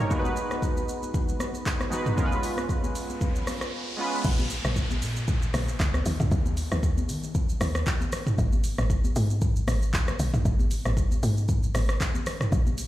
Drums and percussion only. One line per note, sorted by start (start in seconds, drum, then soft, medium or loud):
0.00 shaker medium
0.11 kick loud
0.11 shaker medium
0.25 high conga medium
0.25 shaker soft
0.36 shaker medium
0.51 cross-stick medium
0.51 high conga medium
0.51 shaker medium
0.62 kick medium
0.62 shaker medium
0.77 high conga medium
0.77 shaker soft
0.89 shaker medium
1.03 high conga soft
1.03 shaker medium
1.14 kick loud
1.14 low conga medium
1.14 shaker medium
1.28 shaker medium
1.40 cross-stick medium
1.40 high conga medium
1.40 shaker loud
1.54 shaker medium
1.66 kick medium
1.66 clap loud
1.66 shaker medium
1.80 cross-stick medium
1.80 high conga medium
1.80 shaker soft
1.92 low conga medium
1.92 shaker loud
2.06 mid tom medium
2.06 shaker medium
2.18 kick loud
2.18 shaker medium
2.32 high conga medium
2.32 shaker soft
2.43 open hi-hat medium
2.43 shaker medium
2.58 cross-stick medium
2.58 high conga medium
2.58 shaker medium
2.69 kick medium
2.69 shaker medium
2.84 high conga medium
2.84 shaker soft
2.95 open hi-hat medium
2.95 shaker medium
3.10 high conga soft
3.10 shaker soft
3.21 kick loud
3.21 low conga medium
3.21 shaker medium
3.35 shaker medium
3.47 cross-stick medium
3.47 open hi-hat medium
3.47 high conga medium
3.47 shaker loud
3.61 cross-stick loud
3.61 shaker medium
4.25 kick loud
4.25 crash loud
4.25 shaker medium
4.39 high conga medium
4.39 shaker medium
4.50 open hi-hat medium
4.50 shaker loud
4.65 cross-stick medium
4.65 high conga medium
4.65 shaker medium
4.76 kick medium
4.76 shaker medium
4.91 high conga medium
4.91 shaker medium
5.02 open hi-hat medium
5.02 shaker medium
5.16 high conga soft
5.16 shaker medium
5.28 kick loud
5.28 low conga medium
5.28 shaker medium
5.42 shaker medium
5.54 cross-stick loud
5.54 open hi-hat medium
5.54 high conga medium
5.54 shaker loud
5.68 shaker medium
5.80 kick loud
5.80 clap loud
5.80 low conga medium
5.80 shaker medium
5.94 cross-stick medium
5.94 high conga medium
5.94 shaker medium
6.06 open hi-hat medium
6.06 low conga medium
6.06 shaker loud
6.20 mid tom medium
6.20 shaker medium
6.31 kick loud
6.31 shaker medium
6.46 high conga medium
6.46 shaker soft
6.57 open hi-hat medium
6.57 shaker loud
6.72 cross-stick loud
6.72 high conga medium
6.72 shaker medium
6.83 kick medium
6.83 shaker medium
6.97 high conga medium
6.97 shaker medium
7.09 open hi-hat medium
7.09 shaker medium
7.23 high conga medium
7.23 shaker medium
7.35 kick loud
7.35 low conga medium
7.35 shaker medium
7.49 shaker medium
7.61 cross-stick loud
7.61 open hi-hat medium
7.61 high conga medium
7.61 shaker loud
7.75 cross-stick loud
7.75 shaker medium
7.87 kick loud
7.87 clap loud
7.87 low conga medium
7.87 shaker medium
8.01 high conga medium
8.01 shaker medium
8.12 cross-stick loud
8.12 open hi-hat medium
8.12 low conga medium
8.12 shaker loud
8.27 mid tom loud
8.27 shaker medium
8.38 kick loud
8.38 shaker medium
8.52 high conga medium
8.52 shaker soft
8.64 open hi-hat medium
8.64 shaker loud
8.78 cross-stick medium
8.78 high conga medium
8.78 shaker medium
8.90 kick loud
8.90 shaker medium
9.04 high conga medium
9.04 shaker medium
9.16 open hi-hat medium
9.16 shaker medium
9.30 high conga soft
9.30 shaker medium
9.42 kick loud
9.42 low conga medium
9.42 shaker medium
9.56 shaker medium
9.67 cross-stick loud
9.67 open hi-hat medium
9.67 high conga medium
9.67 shaker loud
9.82 shaker medium
9.93 kick loud
9.93 clap loud
9.93 low conga medium
9.93 shaker medium
10.08 cross-stick loud
10.08 high conga medium
10.08 shaker medium
10.19 open hi-hat medium
10.19 low conga medium
10.19 shaker loud
10.34 mid tom medium
10.34 shaker medium
10.45 kick loud
10.45 shaker medium
10.59 high conga medium
10.59 shaker soft
10.71 open hi-hat medium
10.71 shaker loud
10.85 cross-stick medium
10.85 high conga medium
10.85 shaker medium
10.97 kick medium
10.97 shaker medium
11.11 high conga medium
11.11 shaker medium
11.23 open hi-hat medium
11.23 shaker medium
11.37 high conga soft
11.37 shaker medium
11.49 kick loud
11.49 low conga medium
11.49 shaker medium
11.63 shaker medium
11.75 cross-stick loud
11.75 open hi-hat medium
11.75 high conga medium
11.75 shaker loud
11.89 cross-stick loud
11.89 shaker medium
12.00 kick loud
12.00 clap loud
12.00 low conga medium
12.00 shaker medium
12.15 high conga medium
12.15 shaker medium
12.26 cross-stick loud
12.26 open hi-hat medium
12.26 low conga medium
12.26 shaker loud
12.41 cross-stick medium
12.41 mid tom medium
12.41 shaker medium
12.52 kick loud
12.52 shaker medium
12.67 high conga medium
12.67 shaker soft
12.78 open hi-hat medium
12.78 shaker loud